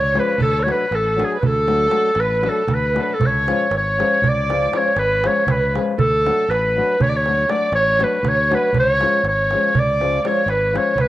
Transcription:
Already playing: C#2 C#5
0.02 darbuka tek
0.14 F3 G#3 C#4 F4 B4, darbuka tek
0.19 B4
0.38 D2 A4, darbuka dum
0.42 A4
0.55 darbuka tek
0.59 C#5
0.63 F#3 A3 D4 F#4 C#5
0.68 B4, darbuka tek
0.80 darbuka tek
0.91 A1 A4, darbuka tek
0.95 A4
1.07 darbuka tek
1.16 F#3 A3 D4 F#4, darbuka tek
1.21 G#4
1.25 G#4
1.31 darbuka tek
1.36 B4
1.40 D2 A4 B4, darbuka dum
1.48 A4
1.56 darbuka tek
1.67 F#3 A3 D4 F#4, darbuka tek
1.80 darbuka tek
1.90 F#3 A3 D4 F#4, darbuka tek
2.03 darbuka tek
2.15 A1, darbuka tek
2.19 B4
2.29 darbuka tek
2.42 F#3 A3 D4 F#4 A4, darbuka tek
2.50 A4
2.57 darbuka tek
2.67 D2 B4, darbuka tek, darbuka dum
2.74 B4
2.83 darbuka tek
2.94 F#3 A3 D4 F#4, darbuka tek
2.99 A4 B4
3.09 A4, darbuka tek
3.14 A4
3.20 C#2 C#5, darbuka dum
3.26 C#5
3.47 F3 G#3 C#4 F4, darbuka tek
3.60 darbuka tek
3.71 G#1, darbuka tek
3.77 C#5
3.98 F3 G#3 C#4 F4, darbuka tek
4.13 darbuka tek
4.22 C#2, darbuka dum
4.27 D5
4.49 F3 G#3 C#4 F4, darbuka tek
4.62 darbuka tek
4.72 F3 G#3 C#4 F4 C#5, darbuka tek
4.78 C#5
4.86 darbuka tek
4.96 G#1 B4, darbuka tek
5.24 F3 G#3 C#4 F4 C#5, darbuka tek
5.28 C#5
5.36 darbuka tek
5.47 C#2 B4, darbuka tek, darbuka dum
5.51 B4
5.63 darbuka tek
5.74 F3 G#3 C#4 F4, darbuka tek
5.98 D2 A4, darbuka dum
6.25 F#3 A3 D4 F#4, darbuka tek
6.39 darbuka tek
6.48 A1 B4, darbuka tek
6.76 F#3 A3 D4 F#4
6.90 darbuka tek
7.00 D2 C#5, darbuka dum
7.09 D5
7.14 C#5, darbuka tek
7.26 F#3 A3 D4 F#4, darbuka tek
7.38 darbuka tek
7.48 F#3 A3 D4 F#4 D5, darbuka tek
7.53 D5
7.61 darbuka tek
7.72 A1 C#5, darbuka tek
7.99 F#3 A3 D4 F#4 B4, darbuka tek
8.03 B4
8.13 darbuka tek
8.23 D2 C#5, darbuka tek, darbuka dum
8.28 C#5
8.38 darbuka tek
8.51 F#3 A3 D4 F#4 B4, darbuka tek
8.73 C#2 C#5, darbuka dum
8.80 C#5
9.00 F3 G#3 C#4 F4, darbuka tek
9.13 darbuka tek
9.23 G#1, darbuka tek
9.28 C#5
9.51 F3 G#3 C#4 F4, darbuka tek
9.63 darbuka tek
9.74 C#2, darbuka dum
9.79 D5
9.88 darbuka tek
10.00 F3 G#3 C#4 F4, darbuka tek
10.13 darbuka tek
10.24 F3 G#3 C#4 F4 C#5, darbuka tek
10.28 C#5
10.37 darbuka tek
10.46 G#1 B4, darbuka tek
10.73 F3 G#3 C#4 F4 C#5, darbuka tek
10.77 C#5
10.87 darbuka tek
10.95 C#2 B4, darbuka tek, darbuka dum
11.01 B4

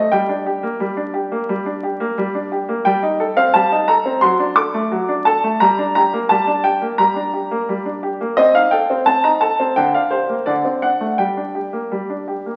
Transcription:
Already playing: A3 D#5
0.12 G3 G5
0.29 D4
0.46 G4
0.63 A#3
0.80 G3
0.97 D4
1.14 G4
1.32 A#3
1.49 G3
1.66 D4
1.83 G4
2.00 A#3
2.18 G3
2.35 D4
2.52 G4
2.69 A#3
2.85 G3 G5
3.03 D#4
3.20 A4
3.37 C4 F5
3.54 G3 A5
3.72 D#4
3.88 A4 A#5
4.06 C4
4.21 F#3 C6
4.40 D4
4.56 A4 D6
4.74 A3
4.92 F#3
5.09 D4
5.25 A4 A5
5.44 A3
5.60 G3 A#5
5.79 D4
5.95 G4 A#5
6.13 A#3
6.29 G3 A5
6.47 D4
6.64 G4 G5
6.82 A#3
6.98 G3 A#5
7.16 D4
7.34 G4
7.51 A#3
7.69 G3
7.86 D4
8.03 G4
8.21 A#3
8.37 C4 D#5
8.55 D#4 F5
8.71 A4 G5
8.90 C4
9.06 C4 A5
9.24 D#4 A#5
9.41 A4 A5
9.60 C4
9.76 D3 G5
9.94 D4 F5
10.11 G4 C5
10.29 A#3
10.46 D3 D5
10.65 C4
10.82 D4 F#5
11.01 A3
11.18 G3 G5
11.37 D4
11.55 G4
11.73 A#3
11.92 G3
12.10 D4
12.28 G4
12.46 A#3

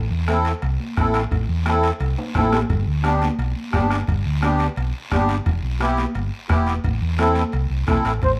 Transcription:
0.10 E2
0.28 C4 E4 A4, bombo rim, high conga, high timbale, short guiro
0.45 high timbale, short guiro
0.62 C2, high conga, high timbale, long guiro
0.80 high conga
0.97 A1 C4 E4 A4, bombo low, bombo rim, high conga, high timbale, short guiro
1.14 bombo rim, high timbale, short guiro
1.31 A1, bombo low, high conga, high timbale, long guiro
1.49 E2
1.66 C4 E4 A4, bombo rim, high conga, high timbale, short guiro
1.83 high timbale, short guiro
2.00 C2, high conga, high timbale, long guiro
2.18 high conga, high timbale
2.35 A1 C4 E4 A4, bombo low, bombo rim, high conga, high timbale, short guiro
2.52 bombo rim, low timbale, short guiro
2.70 G1, bombo low, high conga, high timbale, long guiro
2.87 D2
3.03 B3 D4 G4, bombo rim, high conga, high timbale, short guiro
3.21 high conga, high timbale, short guiro
3.39 B1, high conga, high timbale, long guiro
3.56 high conga
3.73 G1 B3 D4 G4, bombo low, bombo rim, high conga, high timbale, low timbale, short guiro
3.90 bombo rim, high timbale, short guiro
4.08 G1, bombo low, high timbale, long guiro
4.26 D2
4.42 B3 D4 G4, bombo rim, high conga, high timbale, short guiro
4.59 high timbale, short guiro
4.76 B1, high timbale, long guiro
5.11 G1 B3 D4 G4, bombo low, bombo rim, high conga, high timbale, low timbale, short guiro
5.29 high timbale, short guiro
5.46 E1, bombo low, high conga, high timbale, long guiro
5.63 B1
5.80 B3 E4 G4, bombo rim, high conga, high timbale, short guiro
5.97 high conga, high timbale, short guiro
6.15 G1, high conga, high timbale, long guiro
6.49 E1 B3 E4 G4, bombo low, bombo rim, high conga, high timbale, low timbale, short guiro
6.67 high timbale, short guiro
6.84 A1, bombo low, high conga, high timbale, long guiro
7.01 E2
7.18 C4 E4 A4, bombo rim, high conga, high timbale, short guiro
7.35 high conga, high timbale, short guiro
7.52 C2, high conga, high timbale, long guiro
7.70 C2
7.87 B1 C4 E4 A4, bombo low, bombo rim, high conga, high timbale, short guiro
8.05 A1, bombo rim, high timbale, short guiro
8.22 A1 C5, bombo low, high conga, high timbale, long guiro

